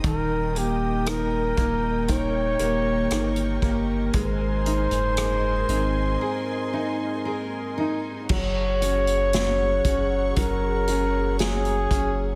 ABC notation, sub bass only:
X:1
M:4/4
L:1/16
Q:1/4=58
K:Gblyd
V:1 name="Sub bass" clef=bass
E,,,6 E,,,4 E,,,2 =G,,,2 G,,,2 | A,,,3 G,,,3 A,,,2 z8 | G,,,6 G,,,2 G,,,6 G,,,2 |]